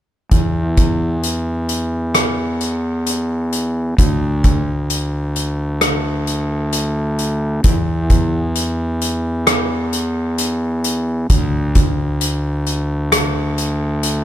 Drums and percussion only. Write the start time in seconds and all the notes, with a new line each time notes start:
0.31 kick, closed hi-hat
0.77 kick, closed hi-hat
1.23 closed hi-hat
1.69 closed hi-hat
2.15 cross-stick, closed hi-hat
2.61 closed hi-hat
3.06 closed hi-hat
3.53 closed hi-hat
3.98 kick, closed hi-hat
4.44 kick, closed hi-hat
4.90 closed hi-hat
5.36 closed hi-hat
5.81 cross-stick, closed hi-hat
6.27 closed hi-hat
6.73 closed hi-hat
7.19 closed hi-hat
7.64 kick, closed hi-hat
8.10 kick, closed hi-hat
8.55 closed hi-hat
9.01 closed hi-hat
9.47 cross-stick, closed hi-hat
9.93 closed hi-hat
10.38 closed hi-hat
10.84 closed hi-hat
11.30 kick, closed hi-hat
11.75 kick, closed hi-hat
12.21 closed hi-hat
12.66 closed hi-hat
13.12 cross-stick, closed hi-hat
13.58 closed hi-hat
14.03 closed hi-hat